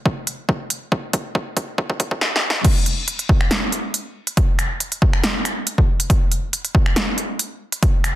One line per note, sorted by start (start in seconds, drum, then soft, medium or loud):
0.06 kick loud
0.27 closed hi-hat medium
0.49 kick loud
0.70 closed hi-hat medium
0.92 kick loud
1.13 kick loud
1.13 closed hi-hat medium
1.35 kick loud
1.57 kick loud
1.57 closed hi-hat medium
1.78 kick loud
1.90 kick medium
2.00 kick loud
2.00 closed hi-hat medium
2.11 kick medium
2.21 snare medium
2.36 snare medium
2.50 snare medium
2.65 kick loud
2.65 closed hi-hat medium
2.65 crash loud
2.86 closed hi-hat medium
3.08 closed hi-hat medium
3.19 closed hi-hat medium
3.29 kick loud
3.41 finger snap medium
3.51 snare loud
3.51 closed hi-hat medium
3.72 closed hi-hat medium
3.94 closed hi-hat medium
4.27 closed hi-hat medium
4.37 kick loud
4.37 closed hi-hat medium
4.59 finger snap medium
4.59 closed hi-hat medium
4.80 closed hi-hat medium
4.92 closed hi-hat medium
5.02 kick loud
5.13 finger snap medium
5.24 snare loud
5.24 closed hi-hat medium
5.45 finger snap medium
5.45 closed hi-hat medium
5.67 closed hi-hat medium
5.78 kick medium
6.00 closed hi-hat medium
6.10 kick loud
6.10 closed hi-hat medium
6.32 closed hi-hat medium
6.53 closed hi-hat medium
6.65 closed hi-hat medium
6.75 kick loud
6.86 finger snap medium
6.96 snare loud
6.96 closed hi-hat medium
7.18 closed hi-hat medium
7.39 closed hi-hat medium
7.72 closed hi-hat medium
7.83 kick loud
7.83 closed hi-hat medium
8.04 finger snap medium
8.04 closed hi-hat soft